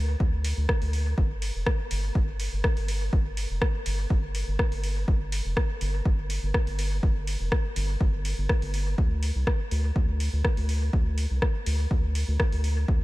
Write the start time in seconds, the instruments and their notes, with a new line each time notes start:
Already playing: analog synth bass D2
0.20 analog synth bass D2, kick
0.44 open hi-hat
0.57 analog synth bass D2
0.69 kick, cross-stick
0.82 analog synth bass D2, open hi-hat
0.93 open hi-hat
1.18 analog synth bass G1, kick
1.42 open hi-hat
1.55 analog synth bass F1
1.66 kick, cross-stick
1.91 analog synth bass G1, open hi-hat
2.15 analog synth bass G1, kick
2.40 open hi-hat
2.52 analog synth bass G1
2.64 kick, cross-stick
2.77 analog synth bass G1, open hi-hat
2.88 open hi-hat
3.13 analog synth bass G1, kick
3.37 open hi-hat
3.50 analog synth bass F1
3.62 kick, cross-stick
3.86 analog synth bass G1, open hi-hat
4.10 analog synth bass G1, kick
4.35 open hi-hat
4.47 analog synth bass G1
4.59 kick, cross-stick
4.72 analog synth bass G1, open hi-hat
4.84 open hi-hat
5.08 analog synth bass G1, kick
5.32 open hi-hat
5.45 analog synth bass F1
5.57 kick, cross-stick
5.81 analog synth bass G1, open hi-hat
6.05 analog synth bass G1, kick
6.30 open hi-hat
6.43 analog synth bass G1
6.54 kick, cross-stick
6.67 analog synth bass G1, open hi-hat
6.79 open hi-hat
7.03 analog synth bass G1, kick
7.27 open hi-hat
7.40 analog synth bass F1
7.52 kick, cross-stick
7.76 analog synth bass G1, open hi-hat
8.01 analog synth bass G1, kick
8.25 open hi-hat
8.38 analog synth bass G1
8.49 kick, cross-stick
8.62 analog synth bass G1, open hi-hat
8.74 open hi-hat
8.98 analog synth bass D2, kick
9.23 open hi-hat
9.35 analog synth bass C2
9.47 kick, cross-stick
9.71 analog synth bass D2, open hi-hat
9.96 analog synth bass D2, kick
10.20 open hi-hat
10.33 analog synth bass D2
10.45 kick, cross-stick
10.57 analog synth bass D2, open hi-hat
10.69 open hi-hat
10.93 analog synth bass D2, kick
11.18 open hi-hat
11.31 analog synth bass C2
11.42 kick, cross-stick
11.66 analog synth bass D2, open hi-hat
11.91 analog synth bass D2, kick
12.15 open hi-hat
12.28 analog synth bass D2
12.40 kick, cross-stick
12.52 analog synth bass D2, open hi-hat
12.64 open hi-hat
12.88 analog synth bass D2, kick